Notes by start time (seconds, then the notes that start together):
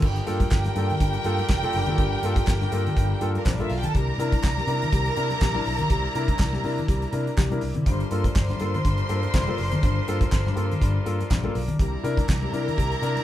0.02 G1 G2 D3 G3 D4 F4 G4 A4 A#4 G5, kick, crash
0.16 closed hi-hat
0.27 G2 A#3 F4 A4, closed hi-hat
0.40 F4 A4, kick, closed hi-hat, high conga
0.51 G1 F4 A4, kick, snare, clap, muted conga
0.64 G2 D3, snare, closed hi-hat, high conga
0.76 G2 A#3 F4 A4, closed hi-hat, muted conga
0.90 closed hi-hat, low conga
1.00 G1 G2 D3, kick, closed hi-hat, muted conga
1.13 closed hi-hat
1.24 G2 A#3 F4 A4, closed hi-hat, muted conga
1.38 F4 A4, closed hi-hat, high conga
1.49 F1, kick, snare, clap, muted conga
1.63 A#3 F4 A4, closed hi-hat, high conga
1.73 F#1 G2 D3, open hi-hat
1.86 A#3 F4 A4, closed hi-hat, low conga
1.98 G1 G2 D3, kick, closed hi-hat
2.23 G2 A#3 F4 A4, closed hi-hat, muted conga
2.36 kick, closed hi-hat, high conga
2.47 G1 F4 A4, kick, snare, clap
2.61 G2 D3, snare, high conga
2.72 G2 A#3 F4 A4, closed hi-hat, muted conga
2.86 closed hi-hat, low conga
2.97 G1 G2 D3, kick, closed hi-hat
3.21 G2 A#3 F4 A4, closed hi-hat, muted conga
3.35 A#3 F4 A4 A#4, closed hi-hat, high conga
3.45 A#1 G2 D3 C4 C5, kick, snare, clap
3.54 D4 D5
3.59 A#3 E4 F4 A4 E5, closed hi-hat, high conga
3.69 B1 F4 A4 F5, open hi-hat, muted conga
3.77 G4 G5
3.83 A4 A5, closed hi-hat, low conga
3.94 C2 C3 G3 A#3 E4 A#4 A#5, kick, closed hi-hat
4.18 C3 D4 E4 A#4, closed hi-hat, muted conga
4.32 E4 A#4, kick, closed hi-hat, high conga
4.43 C2 E4 A#4, kick, snare, clap, muted conga
4.57 C3 G3, snare, high conga
4.67 C3 D4 E4 A#4, closed hi-hat, muted conga
4.82 closed hi-hat, low conga
4.93 C2 C3 G3, kick, closed hi-hat, muted conga
5.05 closed hi-hat
5.16 C3 D4 E4 A#4, closed hi-hat, muted conga
5.30 E4 A#4, closed hi-hat, high conga
5.41 A#1 C3 G3, kick, snare, clap
5.54 D4 E4 A#4, high conga
5.65 B1 E4 A#4, open hi-hat, muted conga
5.79 closed hi-hat, low conga
5.90 C2 C3 G3, kick, closed hi-hat, muted conga
6.14 C3 D4 E4 A#4, closed hi-hat, muted conga
6.28 E4 A#4, kick, closed hi-hat, high conga
6.39 C2 E4 A#4, kick, snare, clap, muted conga
6.53 C3 G3, snare, high conga
6.64 C3 D4 E4 A#4, open hi-hat
6.78 closed hi-hat, low conga
6.88 C2 C3 G3, kick, closed hi-hat
7.02 closed hi-hat
7.13 C3 D4 E4 A#4, closed hi-hat, muted conga
7.26 E4 A#4, closed hi-hat
7.37 C2 C3 G3, kick, snare, clap
7.50 C3 D4 E4 A#4, closed hi-hat, high conga
7.61 C2 E4 A#4, open hi-hat
7.75 C3, closed hi-hat, low conga
7.85 G1 G2 D3 D4 F4 A4 A#4 C5 C6, kick, closed hi-hat, muted conga
8.00 closed hi-hat
8.11 G2 A#3 F4 A4, closed hi-hat, muted conga
8.24 F4 A4, kick, closed hi-hat, high conga
8.36 G1 F4 A4, kick, snare, clap
8.48 G2 D3, snare, closed hi-hat, high conga
8.60 G2 A#3 F4 A4, closed hi-hat, muted conga
8.74 closed hi-hat, low conga
8.84 G1 G2 D3, kick, closed hi-hat, muted conga
8.98 closed hi-hat
9.09 G2 A#3 F4 A4, closed hi-hat, muted conga
9.23 F4 A4, closed hi-hat, high conga
9.34 F1 G2 D3, kick, snare, clap
9.47 A#3 F4 A4, high conga
9.58 F#1 F4 A4, open hi-hat, muted conga
9.71 closed hi-hat, low conga
9.83 G1 G2 D3, kick, closed hi-hat, muted conga
10.08 G2 A#3 F4 A4, closed hi-hat
10.21 F4 A4, kick, closed hi-hat, high conga
10.32 G1 F4 A4, kick, snare, clap, muted conga
10.46 G2 D3, snare, high conga
10.56 G2 A#3 F4 A4, closed hi-hat, muted conga
10.71 closed hi-hat, low conga
10.81 G1 G2 D3, kick, closed hi-hat, muted conga
11.06 G2 A#3 F4 A4, closed hi-hat
11.20 F4 A4, closed hi-hat, high conga
11.31 A#1 G2 D3, kick, snare, clap
11.44 A#3 F4 A4, high conga
11.55 B1 F4 A4, open hi-hat, muted conga
11.68 closed hi-hat, low conga
11.79 C2 C3 G3 A#3 E4 A#4 A#5, kick, closed hi-hat, muted conga
12.03 C3 D4 E4 A#4, closed hi-hat, muted conga
12.17 E4 A#4, kick, closed hi-hat, high conga
12.29 C2 E4 A#4, kick, snare, clap
12.42 C3 G3, high conga
12.52 C3 D4 E4 A#4, closed hi-hat, muted conga
12.68 closed hi-hat, low conga
12.77 C2 C3 G3, kick, closed hi-hat, muted conga
12.92 closed hi-hat
13.02 C3 D4 E4 A#4, closed hi-hat, muted conga
13.15 E4 A#4, closed hi-hat, high conga